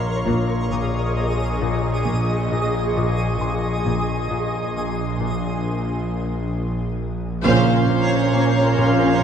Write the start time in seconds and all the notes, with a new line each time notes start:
Already playing: A#1 A#2 A#3 A#4 C#5 D#5 C6
0.27 A#1 A#2 G#4 D#5 C6 C#6 D#6
0.72 A#2
1.17 A#3
1.61 A#2
2.06 A#1 A#2
2.52 A#2
2.96 A#2
3.40 A#2 C6
3.86 A#1 A#2 G#4 D#5 D#6
4.31 A#2
4.62 C6
4.76 A#3
5.20 A#2
7.43 A#1 A#2 C#3 A#3 C#4 F4 A#4 C5 F5 C6
7.88 A#2
8.33 A#3 C5
8.78 A#2 A#3 A#4